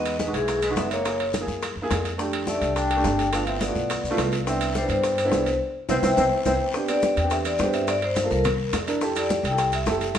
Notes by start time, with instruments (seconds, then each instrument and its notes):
Already playing: upright bass E2, grand piano G#3 D#4 F#4, trombone B3, vibraphone D#5
0.05 high bongo, high conga, high timbale, maracas
0.19 trombone G#3, vibraphone B4, high bongo, high conga, low timbale, short guiro, maracas
0.26 grand piano G#3 D#4 F#4
0.33 upright bass B1, trombone E3, vibraphone G#4, high bongo, high conga, high timbale, short guiro, maracas
0.48 high bongo, high conga, high timbale, long guiro, maracas
0.62 trombone G#3, vibraphone B4, high bongo, high conga, high timbale, maracas
0.69 grand piano G#3 D#4 F#4
0.76 upright bass F#1, trombone B3, vibraphone E5, high bongo, low bongo, high conga, low timbale, short guiro, maracas
0.91 trombone A#3, vibraphone C#5, high conga, high timbale, short guiro, maracas
1.05 grand piano A#3 E4 G#4, high bongo, high conga, high timbale, long guiro, maracas
1.20 high bongo, high conga, high timbale
1.33 high bongo, high conga, high timbale, low timbale, short guiro, maracas
1.40 grand piano A#3 E4 G#4
1.47 upright bass F#2, high bongo, high conga, short guiro, maracas
1.62 high bongo, high conga, high timbale, long guiro, maracas
1.76 upright bass F#2, high conga
1.82 grand piano A#3 E4 G#4
1.91 upright bass F2, high bongo, low bongo, high conga, high timbale, low timbale, short guiro, maracas
2.05 high bongo, high conga, high timbale, short guiro, maracas
2.18 grand piano A3 D4 G4, high bongo, high conga, long guiro, maracas
2.33 high bongo, high conga, high timbale
2.47 trombone A3, vibraphone D5, high bongo, high conga, low timbale, short guiro, maracas
2.55 grand piano A3 D4 G4
2.61 upright bass C2, high bongo, high conga, high timbale, short guiro, maracas
2.76 trombone D4, vibraphone G5, high bongo, high conga, high timbale, long guiro, maracas
2.90 high bongo, high conga, high timbale
2.97 grand piano A3 D4 G4
3.04 upright bass G1, high bongo, low bongo, high conga, low timbale, short guiro, maracas
3.19 high conga, high timbale, short guiro, maracas
3.32 grand piano A3 B3 E4 F4, trombone D4, vibraphone F5, high bongo, high conga, high timbale, long guiro, maracas
3.47 trombone C4, vibraphone E5, high bongo, high conga, high timbale
3.61 trombone B3, vibraphone D5, high bongo, high conga, high timbale, low timbale, short guiro, maracas
3.68 grand piano A3 B3 E4 F4
3.75 upright bass B1, high bongo, high conga, short guiro, maracas
3.89 high bongo, high conga, high timbale, long guiro, maracas
4.03 upright bass B1, high conga, maracas
4.10 grand piano A3 B3 E4 F4
4.17 upright bass C2, high bongo, low bongo, high conga, high timbale, low timbale, short guiro, maracas
4.32 high bongo, high conga, high timbale, short guiro, maracas
4.46 grand piano B3 D4 E4, trombone C4, vibraphone E5, high bongo, high conga, long guiro, maracas
4.61 high bongo, high conga, high timbale, maracas
4.75 trombone G3, vibraphone C5, high bongo, high conga, low timbale, short guiro, maracas
4.82 grand piano B3 D4 E4
4.88 upright bass G2, trombone G3, vibraphone C5, high bongo, high conga, high timbale, short guiro, maracas
5.03 high bongo, high conga, high timbale, long guiro, maracas
5.18 high bongo, high conga, high timbale, maracas
5.24 grand piano B3 D4 E4
5.32 upright bass C2, high bongo, low bongo, high conga, low timbale, short guiro, maracas
5.46 high timbale, short guiro, maracas
5.89 upright bass C2, grand piano B3 C4 E4, trombone C4, vibraphone C5 E5 G5, low bongo, high conga, high timbale, long guiro, maracas
6.03 upright bass C2, grand piano B3 C4 E4, trombone C4, vibraphone C5 E5 G5, low bongo, high conga, high timbale, long guiro, maracas
6.17 upright bass C2, grand piano B3 C4 E4, trombone C4, vibraphone C5 E5 G5, low bongo, high conga, high timbale, long guiro, maracas
6.45 upright bass C2, grand piano B3 C4 E4, trombone C4, vibraphone C5 E5 G5, low bongo, high conga, high timbale, long guiro, maracas
6.74 grand piano B3 C4 D4 G4, high bongo, high conga, long guiro, maracas
6.88 grand piano B3 C4 D4 G4, vibraphone D5, high bongo, high conga, high timbale, maracas
7.02 high bongo, high conga, low timbale, short guiro, maracas
7.16 upright bass E2, vibraphone G5, high bongo, high conga, high timbale, short guiro, maracas
7.24 grand piano B3 C4 D4 G4
7.30 vibraphone E5, high bongo, high conga, high timbale, long guiro, maracas
7.45 vibraphone D5, high bongo, high conga, high timbale, maracas
7.59 upright bass G2, grand piano B3 C4 D4 G4, vibraphone C5, high bongo, low bongo, high conga, low timbale, short guiro, maracas
7.73 vibraphone E5, high conga, high timbale, short guiro, maracas
7.87 vibraphone D5, high bongo, high conga, high timbale, long guiro, maracas
8.02 vibraphone C5, high bongo, high conga, high timbale
8.16 high bongo, high conga, high timbale, low timbale, short guiro, maracas
8.24 grand piano A#3 F4 A4
8.30 upright bass C2, grand piano A#3 F4 A4, vibraphone A#4, high bongo, high conga, short guiro, maracas
8.44 high bongo, high conga, low conga, high timbale, long guiro, maracas
8.60 high conga
8.73 upright bass F2, high bongo, low bongo, high conga, high timbale, low timbale, short guiro, maracas
8.87 grand piano D4 E4 A#4, high bongo, high conga, high timbale, short guiro, maracas
9.01 grand piano E4 G4 A4, high bongo, high conga, long guiro, maracas
9.15 grand piano E4 G4 A4, vibraphone D5, high bongo, high conga, high timbale, maracas
9.30 high bongo, high conga, low timbale, short guiro, maracas
9.43 upright bass C2, vibraphone G5, high bongo, high conga, high timbale, short guiro, maracas
9.51 grand piano E4 G4 A4
9.58 high bongo, high conga, high timbale, long guiro, maracas
9.72 vibraphone E5, high bongo, high conga, high timbale, maracas
9.86 upright bass F#1, grand piano E4 G4 A4, high bongo, low bongo, high conga, low timbale, short guiro, maracas
10.00 high conga, high timbale, short guiro, maracas
10.15 high bongo, high conga, high timbale, maracas